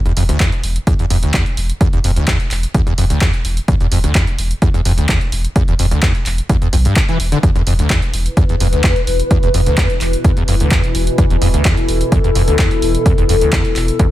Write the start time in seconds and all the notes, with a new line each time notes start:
0.06 E1 E2, closed hi-hat
0.17 E1 F2, open hi-hat
0.29 D2, closed hi-hat
0.40 E2, kick, clap, closed hi-hat
0.52 closed hi-hat
0.64 E1, open hi-hat
0.76 closed hi-hat
0.87 E2, kick, closed hi-hat
0.99 E2, closed hi-hat
1.10 E1 F2, open hi-hat
1.23 D2, closed hi-hat
1.34 E2, kick, clap, closed hi-hat
1.46 closed hi-hat
1.57 E1, open hi-hat
1.70 closed hi-hat
1.81 E2, kick, closed hi-hat
1.93 E1 E2, closed hi-hat
2.04 E1 F2, open hi-hat
2.16 D2, closed hi-hat
2.28 E2, kick, clap, closed hi-hat
2.40 closed hi-hat
2.51 E1, clap, open hi-hat
2.63 closed hi-hat
2.74 E2, kick, closed hi-hat
2.87 E2, closed hi-hat
2.98 E1 F2, open hi-hat
3.10 D2, closed hi-hat
3.21 E2, kick, clap, closed hi-hat
3.34 closed hi-hat
3.45 E1, open hi-hat
3.57 closed hi-hat
3.68 E2, kick, closed hi-hat
3.80 E1 E2, closed hi-hat
3.92 E1 F2, open hi-hat
4.04 D2, closed hi-hat
4.15 E2, kick, clap, closed hi-hat
4.27 closed hi-hat
4.38 E1, open hi-hat
4.51 closed hi-hat
4.62 E2, kick, closed hi-hat
4.74 E2, closed hi-hat
4.85 E1 F2, open hi-hat
4.98 D2, closed hi-hat
5.09 E2, kick, clap, closed hi-hat
5.21 closed hi-hat
5.32 E1, open hi-hat
5.45 closed hi-hat
5.56 E2, kick, closed hi-hat
5.68 E1 E2, closed hi-hat
5.79 E1 F2, open hi-hat
5.91 D2, closed hi-hat
6.03 E2, kick, clap, closed hi-hat
6.15 closed hi-hat
6.26 E1, clap, open hi-hat
6.38 closed hi-hat
6.49 E2, kick, closed hi-hat
6.62 E2, closed hi-hat
6.73 B1 F2, open hi-hat
6.85 G2, closed hi-hat
6.96 D2, kick, clap, closed hi-hat
7.09 E3, closed hi-hat
7.20 E1, open hi-hat
7.32 D3, closed hi-hat
7.43 E2 B2 E3 E4 B4, kick, closed hi-hat
7.55 E1 E2, closed hi-hat
7.67 E1 F2, open hi-hat
7.79 D2, closed hi-hat
7.90 E2, kick, clap, closed hi-hat
8.02 closed hi-hat
8.14 E1, open hi-hat
8.26 closed hi-hat
8.37 E2, kick, closed hi-hat
8.49 E2, closed hi-hat
8.60 E1 F2, open hi-hat
8.73 D2, closed hi-hat
8.84 E2, kick, clap, closed hi-hat
8.96 closed hi-hat
9.07 E1, open hi-hat
9.20 closed hi-hat
9.31 E2, kick, closed hi-hat
9.43 E1 E2, closed hi-hat
9.54 E1 F2, open hi-hat
9.66 D2, closed hi-hat
9.78 E2, kick, clap, closed hi-hat
9.90 closed hi-hat
10.01 E1, clap, open hi-hat
10.13 closed hi-hat
10.24 E2, kick, closed hi-hat
10.37 E2, closed hi-hat
10.48 E1 F2, open hi-hat
10.60 D2, closed hi-hat
10.71 kick, clap, closed hi-hat
10.84 closed hi-hat
10.95 E1, open hi-hat
11.07 closed hi-hat
11.18 E2 A4, kick, closed hi-hat
11.30 E1 E2, closed hi-hat
11.42 E1 F2, open hi-hat
11.54 D2, closed hi-hat
11.65 E2, kick, clap, closed hi-hat
11.77 closed hi-hat
11.89 E1, open hi-hat
12.01 closed hi-hat
12.12 E2, kick, closed hi-hat
12.24 E2, closed hi-hat
12.35 E1 F2, open hi-hat
12.48 D2, closed hi-hat
12.59 E2, kick, clap, closed hi-hat
12.71 closed hi-hat
12.82 E1, open hi-hat
12.95 closed hi-hat
13.06 E2, kick, closed hi-hat
13.18 E1 E2, closed hi-hat
13.29 E1 F2, open hi-hat
13.41 D2, closed hi-hat
13.53 E2, kick, clap, closed hi-hat
13.65 closed hi-hat
13.76 E1, clap, open hi-hat
13.88 closed hi-hat
13.99 E2, kick, closed hi-hat